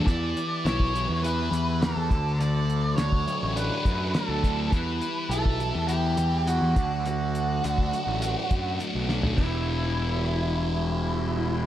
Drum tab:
CC |----------------|----------------|----------------|----------------|
HH |x-x-x-x-x-x-x-x-|x-x-x-x-x-x-x-x-|x-x-x-x-x-x-x-x-|x-x-x-x-x-x-x---|
SD |----o-------o---|----o-------o---|----------------|--------------o-|
FT |----------------|----------------|----------------|---------------o|
BD |o----o--------o-|-----o----o---o-|o----o--------o-|-----o----o-----|

CC |x---------------|
HH |----------------|
SD |------r---------|
FT |----------------|
BD |o---------------|